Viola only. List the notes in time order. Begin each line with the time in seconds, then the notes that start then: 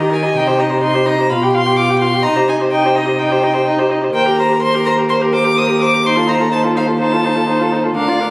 0.00 G4
0.12 D#4
0.24 G4
0.36 D#4
0.47 G4
0.59 D#4
0.71 G4
0.82 D#4
0.94 G4
1.06 D#4
1.18 G4
1.31 F4
1.43 G4
1.54 F4
1.66 G4
1.79 F4
1.89 G4
2.01 F4
2.14 G4
2.25 D#4
2.37 G4
2.49 D#4
2.60 G4
2.72 D#4
2.84 G4
2.95 D#4
3.06 G4
3.18 D#4
3.31 G4
3.43 D#4
3.55 G4
3.67 D#4
3.79 G4
3.90 D#4
4.02 G4
4.13 A#4
4.26 G4
4.38 A#4
4.49 G4
4.61 A#4
4.73 G4
4.86 A#4
4.97 G4
5.10 A#4
5.20 G4
5.33 A#4
5.45 G4
5.56 A#4
5.69 G4
5.80 A#4
5.93 G4
6.04 D#4
6.16 F4
6.27 D#4
6.39 F4
6.50 D#4
6.64 F4
6.75 D#4
6.88 F4
7.00 D#4
7.13 F4
7.24 D#4
7.35 F4
7.47 D#4
7.60 F4
7.71 D#4
7.84 F4
7.96 D4
8.07 F4
8.20 D4